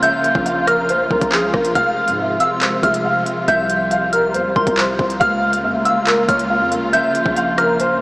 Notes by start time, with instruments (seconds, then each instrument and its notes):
Already playing: string section C#3 A#3 F4
0.02 string section F3, grand piano E5, synth bell G6, closed hi-hat
0.24 closed hi-hat
0.35 808-style bass A#1, kick
0.46 grand piano F5, closed hi-hat
0.67 grand piano A#4, synth bell F6, cross-stick, closed hi-hat
0.89 grand piano C5, closed hi-hat
1.11 808-style bass A#1, grand piano A#4, kick
1.21 808-style bass A#1, kick, closed hi-hat
1.32 grand piano G#4, clap
1.43 808-style bass C#2
1.54 808-style bass A#1, grand piano A#4, kick, cross-stick
1.65 closed hi-hat
1.75 808-style bass F1, string section C3 F3 G#3, grand piano F5, synth bell F6, kick, closed hi-hat
2.08 808-style bass G#2, closed hi-hat
2.19 grand piano E5
2.40 grand piano F5, synth bell E6, closed hi-hat
2.62 grand piano C5, clap, closed hi-hat
2.83 808-style bass F1, grand piano E5, synth bell F6, kick, closed hi-hat
2.94 closed hi-hat
3.05 grand piano F5
3.26 closed hi-hat
3.48 808-style bass C2, string section G3, grand piano E5, synth bell G6, closed hi-hat
3.70 closed hi-hat
3.91 grand piano F5, closed hi-hat
4.13 grand piano A#4, synth bell F6, closed hi-hat
4.34 808-style bass E2, grand piano C5, closed hi-hat
4.45 808-style bass C2
4.56 808-style bass C2, grand piano A#4, synth bell C6, kick
4.67 808-style bass C2, kick, closed hi-hat
4.78 grand piano C5, clap
4.99 808-style bass C2, kick
5.10 closed hi-hat
5.20 808-style bass C#2, string section C#3 G#3 A#3 F4, grand piano F5, synth bell F6, kick, closed hi-hat
5.53 closed hi-hat
5.64 808-style bass F2, grand piano E5
5.75 808-style bass C#2
5.85 grand piano F5, synth bell E6, closed hi-hat
6.07 grand piano A#4, clap, closed hi-hat
6.29 808-style bass C#2, grand piano C#5, synth bell F6, kick, closed hi-hat
6.39 closed hi-hat
6.50 grand piano F5
6.61 808-style bass F2
6.72 closed hi-hat
6.77 808-style bass C#2
6.93 string section F3 A#3, grand piano E5, synth bell G6, closed hi-hat
7.15 closed hi-hat
7.26 808-style bass A#1, kick
7.36 grand piano F5, closed hi-hat
7.58 grand piano A#4, synth bell F6, cross-stick, closed hi-hat
7.80 grand piano C5, closed hi-hat